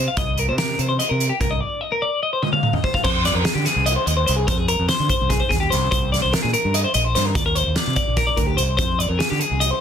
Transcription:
0.08 0.18 F5 medium
0.17 0.50 C2 loud
0.17 0.39 D#5 medium
0.17 kick loud
0.17 closed hi-hat medium
0.38 0.48 A#4 medium
0.38 closed hi-hat medium
0.48 0.77 C3 medium
0.48 0.58 C5 medium
0.58 0.79 A#4 medium
0.58 snare medium
0.58 closed hi-hat medium
0.79 0.98 C3 medium
0.79 0.87 C5 medium
0.79 closed hi-hat medium
0.89 0.99 C5 medium
0.99 1.10 D#5 medium
0.99 closed hi-hat medium
1.09 1.30 C3 medium
1.09 1.29 A#4 medium
1.20 closed hi-hat medium
1.29 1.41 G4 medium
1.41 1.60 C2 medium
1.41 1.51 A#4 medium
1.41 kick medium
1.41 closed hi-hat medium
1.51 1.60 D#5 medium
1.60 1.81 D5 medium
1.81 1.92 D#5 medium
1.92 2.03 A#4 medium
2.02 2.22 D5 medium
2.23 2.33 D#5 medium
2.33 2.42 C5 medium
2.42 2.52 D#5 medium
2.42 high tom soft
2.53 2.74 F5 medium
2.53 high tom soft
2.63 mid tom medium
2.73 2.85 D#5 medium
2.73 mid tom medium
2.84 2.95 C5 medium
2.84 kick medium
2.94 3.03 F5 medium
2.94 kick medium
3.04 3.34 F2 loud
3.04 3.25 C5 medium
3.04 kick loud
3.04 crash loud
3.25 3.35 D5 medium
3.25 snare soft
3.25 closed hi-hat medium
3.35 3.45 F2 medium
3.35 3.46 A#4 medium
3.45 3.54 G#4 medium
3.45 snare loud
3.45 closed hi-hat medium
3.54 3.65 D3 medium
3.54 3.65 G4 medium
3.65 3.87 G#4 medium
3.65 snare soft
3.65 closed hi-hat medium
3.76 3.96 C2 medium
3.86 3.96 D#5 medium
3.86 closed hi-hat medium
3.96 4.06 C5 medium
4.06 4.26 D#2 medium
4.06 4.16 D#5 medium
4.06 closed hi-hat medium
4.17 4.25 C5 medium
4.26 4.47 C2 medium
4.26 4.36 C5 medium
4.26 closed hi-hat medium
4.36 4.47 G#4 medium
4.47 4.77 F2 loud
4.47 4.58 C5 medium
4.47 kick loud
4.47 closed hi-hat medium
4.58 4.68 G#4 medium
4.68 4.88 A#4 medium
4.68 closed hi-hat medium
4.79 4.89 F2 medium
4.89 5.09 C5 medium
4.89 snare loud
4.89 closed hi-hat medium
5.00 5.09 D3 medium
5.09 5.31 C5 medium
5.09 kick medium
5.09 closed hi-hat medium
5.22 5.40 C2 medium
5.30 5.41 G#4 medium
5.30 kick loud
5.30 snare soft
5.30 closed hi-hat medium
5.40 5.51 C5 medium
5.49 5.70 D#2 medium
5.49 5.60 G#4 medium
5.49 kick medium
5.49 snare soft
5.49 closed hi-hat medium
5.60 5.71 G4 medium
5.70 5.92 C2 medium
5.70 5.90 C5 medium
5.70 snare soft
5.70 closed hi-hat medium
5.91 6.12 C5 medium
5.91 kick loud
5.91 closed hi-hat medium
6.12 6.22 D5 medium
6.12 snare soft
6.12 closed hi-hat medium
6.22 6.33 C2 medium
6.22 6.33 C5 medium
6.33 6.42 A#4 medium
6.33 snare loud
6.33 closed hi-hat medium
6.42 6.54 A#2 medium
6.42 6.53 G#4 medium
6.53 6.74 A#4 medium
6.53 closed hi-hat medium
6.65 6.84 G2 medium
6.74 6.84 D#5 medium
6.74 closed hi-hat medium
6.84 6.94 C5 medium
6.94 7.14 A#1 medium
6.94 7.05 D#5 medium
6.94 closed hi-hat medium
7.05 7.14 C5 medium
7.15 7.35 G2 medium
7.15 7.25 C5 medium
7.15 snare soft
7.15 closed hi-hat medium
7.25 7.35 A#4 medium
7.35 7.64 D#2 loud
7.35 7.45 D5 medium
7.35 kick loud
7.35 closed hi-hat medium
7.46 7.55 A#4 medium
7.55 7.75 C5 medium
7.55 closed hi-hat medium
7.66 7.76 D#2 medium
7.75 7.95 D5 medium
7.75 snare loud
7.75 closed hi-hat medium
7.87 7.97 C3 medium
7.96 8.17 D5 medium
7.96 kick medium
7.96 closed hi-hat medium
8.08 8.27 A#1 medium
8.17 8.28 A#4 medium
8.17 kick loud
8.17 snare soft
8.17 closed hi-hat medium
8.27 8.38 D5 medium
8.37 8.57 D2 medium
8.37 8.47 A#4 medium
8.37 kick medium
8.37 closed hi-hat medium
8.47 8.58 G4 medium
8.57 8.78 C2 medium
8.57 8.76 C5 medium
8.57 closed hi-hat medium
8.77 9.08 F2 loud
8.77 8.99 C5 medium
8.77 kick loud
8.77 closed hi-hat medium
8.99 9.09 D5 medium
8.99 closed hi-hat medium
9.09 9.19 F2 medium
9.09 9.20 A#4 medium
9.19 9.30 G#4 medium
9.19 snare loud
9.19 closed hi-hat medium
9.30 9.41 D3 medium
9.30 9.40 G4 medium
9.40 9.61 G#4 medium
9.40 closed hi-hat medium
9.51 9.70 C2 medium
9.60 9.71 D#5 medium
9.60 closed hi-hat medium
9.71 9.80 C5 medium

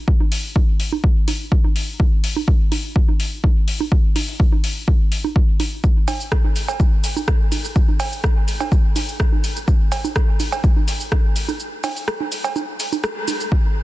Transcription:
0.08 kick loud
0.20 low bongo soft
0.32 open hi-hat medium
0.56 kick loud
0.56 low bongo soft
0.80 open hi-hat medium
0.92 low bongo soft
1.04 kick loud
1.28 open hi-hat medium
1.28 low bongo soft
1.52 kick loud
1.64 low bongo soft
1.76 open hi-hat medium
2.00 kick loud
2.00 low bongo soft
2.24 open hi-hat medium
2.36 low bongo soft
2.48 kick loud
2.72 open hi-hat medium
2.72 low bongo soft
2.96 kick loud
3.08 low bongo soft
3.20 open hi-hat medium
3.44 kick loud
3.44 low bongo soft
3.68 open hi-hat medium
3.80 low bongo soft
3.92 kick loud
4.16 open hi-hat medium
4.16 low bongo soft
4.28 open hi-hat soft
4.40 kick loud
4.52 low bongo soft
4.64 open hi-hat medium
4.88 kick loud
4.88 low bongo soft
5.12 open hi-hat medium
5.24 low bongo soft
5.36 kick loud
5.60 open hi-hat medium
5.60 low bongo soft
5.84 kick loud
5.84 cabasa soft
6.08 open hi-hat medium
6.08 cowbell medium
6.08 low bongo soft
6.08 cabasa medium
6.20 cabasa soft
6.32 kick loud
6.32 cross-stick medium
6.32 cabasa soft
6.44 low bongo soft
6.56 open hi-hat medium
6.56 cabasa medium
6.68 cowbell medium
6.68 cabasa soft
6.80 kick loud
6.80 low bongo soft
6.80 cabasa soft
7.04 open hi-hat medium
7.04 cabasa medium
7.16 low bongo soft
7.16 cabasa soft
7.28 kick loud
7.28 cross-stick medium
7.28 cabasa soft
7.52 open hi-hat medium
7.52 low bongo soft
7.52 cabasa medium
7.64 cabasa soft
7.76 kick loud
7.76 cabasa soft
7.88 low bongo soft
8.00 open hi-hat medium
8.00 cowbell medium
8.00 cabasa medium
8.12 cabasa soft
8.24 kick loud
8.24 cross-stick medium
8.24 low bongo soft
8.24 cabasa soft
8.48 open hi-hat medium
8.48 cabasa medium
8.60 cowbell medium
8.60 low bongo soft
8.60 cabasa soft
8.72 kick loud
8.72 cabasa soft
8.96 open hi-hat medium
8.96 low bongo soft
8.96 cabasa medium
9.09 cabasa soft
9.20 kick loud
9.20 cross-stick medium
9.20 cabasa soft
9.32 low bongo soft
9.44 open hi-hat medium
9.44 cabasa medium
9.56 cabasa soft
9.68 kick loud
9.68 low bongo soft
9.68 cabasa soft
9.92 open hi-hat medium
9.92 cowbell medium
9.92 cabasa medium
10.04 low bongo soft
10.04 cabasa soft
10.16 kick loud
10.16 cross-stick medium
10.16 cabasa soft
10.40 open hi-hat medium
10.40 low bongo soft
10.40 cabasa medium
10.52 cowbell medium
10.52 cabasa soft
10.64 kick loud
10.64 cabasa soft
10.76 low bongo soft
10.88 open hi-hat medium
10.88 cabasa medium
11.00 cabasa soft
11.12 kick loud
11.12 cross-stick medium
11.12 low bongo soft
11.12 cabasa soft
11.36 open hi-hat medium
11.36 cabasa medium
11.48 low bongo soft
11.48 cabasa soft
11.60 cabasa soft
11.84 open hi-hat medium
11.84 cowbell medium
11.84 low bongo soft
11.84 cabasa medium
11.96 open hi-hat soft
11.96 cabasa soft
12.08 cross-stick medium
12.08 cabasa soft
12.20 low bongo soft
12.32 open hi-hat medium
12.32 cabasa medium
12.44 cowbell medium
12.44 cabasa soft
12.56 low bongo soft
12.56 cabasa soft
12.80 open hi-hat medium
12.80 cabasa medium
12.92 low bongo soft
12.92 cabasa soft
13.04 cross-stick medium
13.04 cabasa soft
13.28 open hi-hat medium
13.28 low bongo soft
13.28 cabasa medium
13.40 cabasa soft
13.52 kick loud

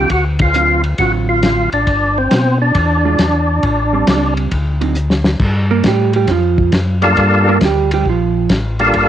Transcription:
0.10 0.94 D2 medium
0.10 0.25 F#4 medium
0.10 kick soft
0.10 ride medium
0.39 0.82 F4 medium
0.39 kick medium
0.39 ride medium
0.54 0.81 D3 medium
0.54 0.82 F#3 medium
0.54 0.82 C4 medium
0.54 0.82 F4 medium
0.54 hi-hat pedal medium
0.84 ride soft
0.98 1.68 A1 medium
0.98 1.67 D3 medium
0.98 1.67 F#3 medium
0.98 1.67 C4 medium
0.98 1.67 F4 medium
0.98 1.12 F#4 medium
0.98 kick soft
0.98 ride medium
1.29 1.70 F4 medium
1.43 snare medium
1.43 hi-hat pedal medium
1.43 ride medium
1.72 1.86 A1 medium
1.72 2.18 D4 medium
1.72 ride soft
1.87 2.28 G1 medium
1.87 kick soft
1.87 ride medium
2.18 2.58 C4 loud
2.31 2.72 B2 medium
2.31 snare medium
2.31 hi-hat pedal medium
2.31 ride medium
2.62 4.34 D4 medium
2.75 3.16 E2 medium
2.75 kick soft
2.75 ride medium
3.05 3.18 E3 medium
3.05 3.18 G#3 medium
3.05 3.18 D4 medium
3.05 3.18 F4 medium
3.19 3.60 E2 medium
3.19 snare medium
3.19 hi-hat pedal medium
3.19 ride medium
3.63 4.04 A1 medium
3.63 kick soft
3.63 ride medium
3.93 4.49 G3 medium
3.93 4.49 C4 medium
4.07 4.48 C#2 medium
4.07 snare medium
4.07 hi-hat pedal medium
4.07 ride medium
4.37 ride soft
4.51 5.36 D2 medium
4.51 kick soft
4.51 ride medium
4.81 4.94 D3 medium
4.81 4.94 F#3 medium
4.81 4.95 C4 medium
4.81 4.95 D#4 medium
4.81 ride soft
4.95 hi-hat pedal medium
5.10 snare medium
5.24 snare medium
5.39 5.83 G2 medium
5.39 kick medium
5.39 crash medium
5.71 5.84 A#3 medium
5.71 5.84 A#4 medium
5.84 6.27 A2 medium
5.84 kick soft
5.84 snare medium
5.84 hi-hat pedal medium
5.84 ride medium
5.88 6.15 G3 medium
5.88 6.15 G4 medium
6.13 6.29 G3 medium
6.13 6.29 G4 medium
6.13 ride soft
6.28 6.71 F2 medium
6.28 6.71 F4 medium
6.28 kick soft
6.28 snare soft
6.28 ride medium
6.32 6.72 F3 medium
6.58 kick medium
6.72 7.16 F#2 medium
6.72 kick soft
6.72 snare medium
6.72 hi-hat pedal soft
6.72 ride medium
7.02 7.58 G3 medium
7.02 7.58 A#3 medium
7.02 7.58 D4 medium
7.02 7.59 F4 medium
7.02 7.59 A4 medium
7.02 ride soft
7.17 7.60 G2 medium
7.17 kick soft
7.17 ride soft
7.49 7.62 A#3 medium
7.49 7.62 A#4 loud
7.61 8.04 D2 medium
7.61 kick soft
7.61 snare medium
7.61 hi-hat pedal soft
7.61 ride medium
7.65 7.92 G3 medium
7.65 7.92 G4 medium
7.91 8.07 G3 medium
7.91 8.06 G4 medium
7.91 ride medium
8.06 8.48 A#1 medium
8.06 8.49 F3 medium
8.06 8.49 F4 medium
8.06 kick soft
8.50 8.93 A1 medium
8.50 kick soft
8.50 snare medium
8.50 hi-hat pedal medium
8.50 ride medium
8.79 9.09 G3 medium
8.79 9.09 A#3 medium
8.79 9.09 D4 medium
8.79 9.09 F4 medium
8.79 9.09 A4 medium
8.79 ride soft
8.94 9.09 G1 medium
8.94 kick soft
8.94 ride medium

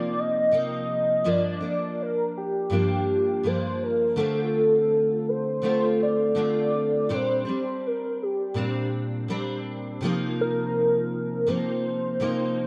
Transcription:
0.00 0.50 C3 medium
0.00 0.52 F3 medium
0.00 0.53 A#3 medium
0.00 0.53 D#4 medium
0.00 0.21 D5 loud
0.19 1.30 D#5 loud
0.51 1.25 C3 medium
0.51 1.25 F3 medium
0.51 1.26 A#3 medium
0.51 1.26 D#4 medium
1.25 1.62 G2 medium
1.25 1.62 F3 medium
1.25 1.61 A#3 medium
1.25 1.59 D4 medium
1.29 2.03 D5 loud
1.61 2.71 F3 soft
1.61 2.71 A#3 soft
1.61 2.73 D4 soft
2.02 2.37 A#4 medium
2.37 3.48 G4 medium
2.70 3.42 G2 medium
2.70 3.44 F3 medium
2.70 3.44 A#3 medium
2.70 3.46 D4 medium
3.43 4.17 G2 medium
3.43 4.17 F3 medium
3.43 4.18 A#3 medium
3.43 4.20 D4 medium
3.43 3.85 C5 loud
3.83 4.23 A#4 medium
4.16 5.61 D3 medium
4.16 5.62 A3 medium
4.16 5.64 C4 medium
4.20 5.64 F4 medium
4.20 5.30 A4 medium
5.29 5.64 C5 medium
5.62 6.34 D3 medium
5.62 6.35 A3 medium
5.62 6.37 C4 medium
5.62 6.37 F4 medium
5.62 5.98 C5 loud
6.03 7.15 D5 loud
6.35 7.13 D3 medium
6.35 7.09 A3 medium
6.35 7.10 C4 medium
6.35 7.11 F4 medium
7.09 7.45 A#2 medium
7.09 7.46 G3 medium
7.09 7.46 C4 medium
7.09 7.44 D4 medium
7.14 7.88 C5 loud
7.45 8.55 G3 soft
7.45 8.56 C4 soft
7.45 8.57 D4 soft
7.87 8.24 A#4 medium
8.23 9.66 G4 medium
8.54 9.27 A#2 medium
8.54 9.29 G3 medium
8.54 9.30 C4 medium
8.54 9.31 D4 medium
9.28 10.01 A#2 medium
9.28 10.02 G3 medium
9.28 10.04 C4 medium
9.28 10.04 D4 medium
10.01 11.45 C3 medium
10.01 11.47 F3 medium
10.01 11.48 A#3 medium
10.05 11.48 D#4 medium
10.41 11.50 A#4 medium
11.47 12.19 C3 medium
11.47 12.21 F3 medium
11.47 12.21 A#3 medium
11.47 12.21 D#4 medium
11.47 12.67 C5 medium
12.20 12.67 C3 medium
12.20 12.67 F3 medium
12.20 12.67 A#3 medium
12.20 12.67 D#4 medium

